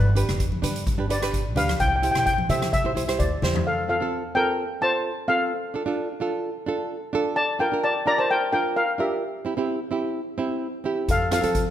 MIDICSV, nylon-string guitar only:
0, 0, Header, 1, 2, 480
1, 0, Start_track
1, 0, Key_signature, -1, "major"
1, 0, Tempo, 464756
1, 1857, Time_signature, 4, 2, 24, 8
1, 12088, End_track
2, 0, Start_track
2, 0, Title_t, "Nylon-string guitar"
2, 0, Program_c, 0, 24
2, 159, Note_on_c, 0, 62, 75
2, 171, Note_on_c, 0, 67, 64
2, 179, Note_on_c, 0, 71, 81
2, 456, Note_off_c, 0, 62, 0
2, 462, Note_off_c, 0, 67, 0
2, 466, Note_off_c, 0, 71, 0
2, 641, Note_on_c, 0, 62, 86
2, 650, Note_on_c, 0, 67, 76
2, 660, Note_on_c, 0, 71, 91
2, 865, Note_off_c, 0, 62, 0
2, 869, Note_off_c, 0, 67, 0
2, 874, Note_off_c, 0, 71, 0
2, 1011, Note_on_c, 0, 62, 68
2, 1021, Note_on_c, 0, 67, 62
2, 1034, Note_on_c, 0, 71, 72
2, 1084, Note_off_c, 0, 62, 0
2, 1090, Note_off_c, 0, 67, 0
2, 1095, Note_off_c, 0, 71, 0
2, 1129, Note_on_c, 0, 62, 68
2, 1137, Note_on_c, 0, 67, 61
2, 1146, Note_on_c, 0, 71, 77
2, 1208, Note_off_c, 0, 62, 0
2, 1211, Note_off_c, 0, 67, 0
2, 1216, Note_off_c, 0, 71, 0
2, 1259, Note_on_c, 0, 62, 80
2, 1265, Note_on_c, 0, 67, 68
2, 1276, Note_on_c, 0, 71, 96
2, 1475, Note_off_c, 0, 62, 0
2, 1479, Note_off_c, 0, 67, 0
2, 1484, Note_off_c, 0, 71, 0
2, 1609, Note_on_c, 0, 62, 71
2, 1618, Note_on_c, 0, 67, 62
2, 1627, Note_on_c, 0, 71, 83
2, 1853, Note_off_c, 0, 62, 0
2, 1858, Note_off_c, 0, 67, 0
2, 1863, Note_off_c, 0, 71, 0
2, 2092, Note_on_c, 0, 64, 74
2, 2104, Note_on_c, 0, 67, 63
2, 2110, Note_on_c, 0, 72, 79
2, 2386, Note_off_c, 0, 64, 0
2, 2392, Note_off_c, 0, 67, 0
2, 2395, Note_off_c, 0, 72, 0
2, 2573, Note_on_c, 0, 64, 67
2, 2579, Note_on_c, 0, 67, 59
2, 2592, Note_on_c, 0, 72, 75
2, 2793, Note_off_c, 0, 64, 0
2, 2797, Note_off_c, 0, 67, 0
2, 2803, Note_off_c, 0, 72, 0
2, 2937, Note_on_c, 0, 64, 66
2, 2946, Note_on_c, 0, 67, 60
2, 2954, Note_on_c, 0, 72, 73
2, 3010, Note_off_c, 0, 64, 0
2, 3014, Note_off_c, 0, 67, 0
2, 3018, Note_off_c, 0, 72, 0
2, 3046, Note_on_c, 0, 64, 68
2, 3058, Note_on_c, 0, 67, 65
2, 3066, Note_on_c, 0, 72, 75
2, 3128, Note_off_c, 0, 64, 0
2, 3134, Note_off_c, 0, 67, 0
2, 3138, Note_off_c, 0, 72, 0
2, 3177, Note_on_c, 0, 64, 82
2, 3182, Note_on_c, 0, 67, 73
2, 3194, Note_on_c, 0, 72, 91
2, 3396, Note_off_c, 0, 64, 0
2, 3399, Note_off_c, 0, 67, 0
2, 3405, Note_off_c, 0, 72, 0
2, 3534, Note_on_c, 0, 64, 69
2, 3544, Note_on_c, 0, 67, 62
2, 3553, Note_on_c, 0, 72, 72
2, 3777, Note_off_c, 0, 64, 0
2, 3782, Note_off_c, 0, 67, 0
2, 3787, Note_off_c, 0, 72, 0
2, 4010, Note_on_c, 0, 60, 71
2, 4020, Note_on_c, 0, 65, 68
2, 4029, Note_on_c, 0, 69, 72
2, 4090, Note_off_c, 0, 60, 0
2, 4096, Note_off_c, 0, 65, 0
2, 4100, Note_off_c, 0, 69, 0
2, 4135, Note_on_c, 0, 60, 79
2, 4147, Note_on_c, 0, 65, 69
2, 4154, Note_on_c, 0, 69, 89
2, 4355, Note_off_c, 0, 60, 0
2, 4361, Note_off_c, 0, 65, 0
2, 4365, Note_off_c, 0, 69, 0
2, 4492, Note_on_c, 0, 60, 75
2, 4500, Note_on_c, 0, 65, 62
2, 4511, Note_on_c, 0, 69, 79
2, 4786, Note_off_c, 0, 60, 0
2, 4790, Note_off_c, 0, 65, 0
2, 4796, Note_off_c, 0, 69, 0
2, 4969, Note_on_c, 0, 60, 68
2, 4981, Note_on_c, 0, 65, 64
2, 4988, Note_on_c, 0, 69, 79
2, 5264, Note_off_c, 0, 60, 0
2, 5270, Note_off_c, 0, 65, 0
2, 5274, Note_off_c, 0, 69, 0
2, 5452, Note_on_c, 0, 60, 75
2, 5462, Note_on_c, 0, 65, 71
2, 5470, Note_on_c, 0, 69, 73
2, 5695, Note_off_c, 0, 60, 0
2, 5700, Note_off_c, 0, 65, 0
2, 5704, Note_off_c, 0, 69, 0
2, 5928, Note_on_c, 0, 62, 76
2, 5937, Note_on_c, 0, 65, 69
2, 5945, Note_on_c, 0, 69, 88
2, 6009, Note_off_c, 0, 62, 0
2, 6013, Note_off_c, 0, 65, 0
2, 6017, Note_off_c, 0, 69, 0
2, 6051, Note_on_c, 0, 62, 92
2, 6062, Note_on_c, 0, 65, 82
2, 6071, Note_on_c, 0, 69, 101
2, 6272, Note_off_c, 0, 62, 0
2, 6277, Note_off_c, 0, 65, 0
2, 6282, Note_off_c, 0, 69, 0
2, 6405, Note_on_c, 0, 62, 79
2, 6415, Note_on_c, 0, 65, 83
2, 6422, Note_on_c, 0, 69, 93
2, 6701, Note_off_c, 0, 62, 0
2, 6706, Note_off_c, 0, 65, 0
2, 6710, Note_off_c, 0, 69, 0
2, 6883, Note_on_c, 0, 62, 92
2, 6895, Note_on_c, 0, 65, 79
2, 6904, Note_on_c, 0, 69, 88
2, 7180, Note_off_c, 0, 62, 0
2, 7186, Note_off_c, 0, 65, 0
2, 7190, Note_off_c, 0, 69, 0
2, 7364, Note_on_c, 0, 62, 86
2, 7372, Note_on_c, 0, 65, 84
2, 7384, Note_on_c, 0, 69, 109
2, 7609, Note_off_c, 0, 62, 0
2, 7614, Note_off_c, 0, 65, 0
2, 7619, Note_off_c, 0, 69, 0
2, 7841, Note_on_c, 0, 62, 81
2, 7853, Note_on_c, 0, 65, 75
2, 7862, Note_on_c, 0, 70, 84
2, 7923, Note_off_c, 0, 62, 0
2, 7929, Note_off_c, 0, 65, 0
2, 7934, Note_off_c, 0, 70, 0
2, 7972, Note_on_c, 0, 62, 76
2, 7981, Note_on_c, 0, 65, 76
2, 7990, Note_on_c, 0, 70, 88
2, 8191, Note_off_c, 0, 62, 0
2, 8195, Note_off_c, 0, 65, 0
2, 8199, Note_off_c, 0, 70, 0
2, 8321, Note_on_c, 0, 62, 76
2, 8329, Note_on_c, 0, 65, 70
2, 8339, Note_on_c, 0, 70, 81
2, 8617, Note_off_c, 0, 62, 0
2, 8621, Note_off_c, 0, 65, 0
2, 8626, Note_off_c, 0, 70, 0
2, 8805, Note_on_c, 0, 62, 68
2, 8814, Note_on_c, 0, 65, 66
2, 8825, Note_on_c, 0, 70, 79
2, 9099, Note_off_c, 0, 62, 0
2, 9103, Note_off_c, 0, 65, 0
2, 9108, Note_off_c, 0, 70, 0
2, 9277, Note_on_c, 0, 62, 73
2, 9287, Note_on_c, 0, 65, 70
2, 9298, Note_on_c, 0, 70, 86
2, 9524, Note_off_c, 0, 62, 0
2, 9529, Note_off_c, 0, 65, 0
2, 9534, Note_off_c, 0, 70, 0
2, 9757, Note_on_c, 0, 60, 75
2, 9768, Note_on_c, 0, 64, 68
2, 9778, Note_on_c, 0, 67, 82
2, 9839, Note_off_c, 0, 60, 0
2, 9845, Note_off_c, 0, 64, 0
2, 9850, Note_off_c, 0, 67, 0
2, 9883, Note_on_c, 0, 60, 89
2, 9892, Note_on_c, 0, 64, 77
2, 9900, Note_on_c, 0, 67, 101
2, 10104, Note_off_c, 0, 60, 0
2, 10108, Note_off_c, 0, 64, 0
2, 10112, Note_off_c, 0, 67, 0
2, 10232, Note_on_c, 0, 60, 81
2, 10240, Note_on_c, 0, 64, 76
2, 10252, Note_on_c, 0, 67, 98
2, 10530, Note_off_c, 0, 60, 0
2, 10535, Note_off_c, 0, 64, 0
2, 10540, Note_off_c, 0, 67, 0
2, 10718, Note_on_c, 0, 60, 86
2, 10728, Note_on_c, 0, 64, 82
2, 10738, Note_on_c, 0, 67, 92
2, 11013, Note_off_c, 0, 60, 0
2, 11018, Note_off_c, 0, 64, 0
2, 11023, Note_off_c, 0, 67, 0
2, 11196, Note_on_c, 0, 60, 84
2, 11210, Note_on_c, 0, 64, 74
2, 11216, Note_on_c, 0, 67, 88
2, 11441, Note_off_c, 0, 60, 0
2, 11448, Note_off_c, 0, 64, 0
2, 11451, Note_off_c, 0, 67, 0
2, 11684, Note_on_c, 0, 60, 73
2, 11693, Note_on_c, 0, 65, 70
2, 11703, Note_on_c, 0, 69, 85
2, 11760, Note_off_c, 0, 60, 0
2, 11765, Note_off_c, 0, 65, 0
2, 11770, Note_off_c, 0, 69, 0
2, 11798, Note_on_c, 0, 60, 81
2, 11809, Note_on_c, 0, 65, 76
2, 11815, Note_on_c, 0, 69, 85
2, 12020, Note_off_c, 0, 60, 0
2, 12025, Note_off_c, 0, 65, 0
2, 12028, Note_off_c, 0, 69, 0
2, 12088, End_track
0, 0, End_of_file